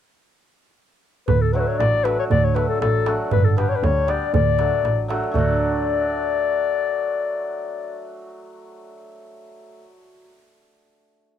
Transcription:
1.28 D2 B4, darbuka dum
1.41 A4, darbuka tek
1.53 F#3 A3 D4 F#4 B4 C#5
1.60 B4
1.67 C#5
1.79 A1 D5, darbuka tek
1.94 darbuka tek
2.04 F#3 A3 D4 F#4 B4, darbuka tek
2.19 C#5
2.30 D2 D5, darbuka dum
2.44 C#5, darbuka tek
2.54 F#3 A3 D4 F#4 B4, darbuka tek
2.68 A4
2.81 A1 A4, darbuka tek
2.94 darbuka tek
3.06 F#3 A3 D4 F#4, darbuka tek
3.31 G1 B4, darbuka dum
3.44 A4, darbuka tek
3.57 G3 B3 D4 G4 B4, darbuka tek
3.69 C#5
3.76 B4
3.83 D2 C#5, darbuka tek
3.97 darbuka tek
4.07 G3 B3 D4 G4 D5, darbuka tek
4.33 D2 D5, darbuka dum
4.58 F#3 A3 D4 F#4, darbuka tek
4.73 darbuka tek
4.83 A1, darbuka tek
4.99 darbuka tek
5.08 F#3 A3 D4 F#4, darbuka tek
5.24 darbuka tek
5.31 D2 F#3 A3 D5, darbuka dum
5.36 D4 F#4

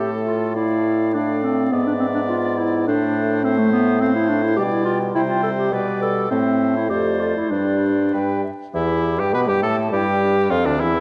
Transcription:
Already playing: A2 A3 G4 A4 E5
0.26 F4
0.55 A3 E4 D5 F5
1.14 A3 D4 D5 F5
1.44 C4
1.72 G#2 B3 D5 E5
1.87 D4
2.00 C4
2.15 D4
2.29 F4
2.58 E4
2.87 A2 A3 D4 C5 E5
3.44 A3 C4 C5 E5
3.58 A3
3.72 B3
4.00 A3 C4 C5 F5
4.15 E4
4.29 D4
4.43 E4
4.56 B2 G3 G4 D5 G5
4.72 E4
4.85 F4
5.15 C3 G3 E4 C5 G5
5.29 F4
5.43 A4
5.58 G4
5.72 B2 G3 B4 D5 G5
6.02 A4
6.30 A2 A3 C4 C5 E5
6.77 E4
6.89 F2 A3 G4 C5 D5
7.20 F4
7.37 E4
7.50 G2 G3 D4 C5 D5
8.12 G2 G3 B4 G5
8.43 E5
8.73 E2 E3 E4 G4 E5
9.19 G2 G3 G4 G5
9.34 B2 B3 B4 B5
9.48 G2 G3 G4 G5
9.62 A2 A3 A4 A5
9.91 G2 G3 E4 G4
9.96 G5
10.21 D4
10.51 F2 F3 C4 F4 F5
10.65 D2 D3 D4 D5
10.80 E2 E3 E4 E5

